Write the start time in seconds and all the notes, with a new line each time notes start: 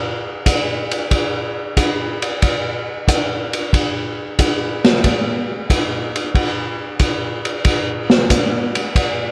0.46 kick, hi-hat pedal, ride
0.92 ride
1.11 kick, ride
1.77 kick, hi-hat pedal, ride
2.22 ride
2.42 kick, ride
3.08 kick, hi-hat pedal, ride
3.54 ride
3.73 kick, ride
4.39 kick, hi-hat pedal, ride
4.84 snare, ride
5.04 kick, ride
5.69 kick, hi-hat pedal, ride
6.16 ride
6.35 kick, ride
6.99 kick, hi-hat pedal, ride
7.45 ride
7.65 kick, ride
8.10 snare
8.30 kick, hi-hat pedal, ride
8.75 ride
8.95 kick, ride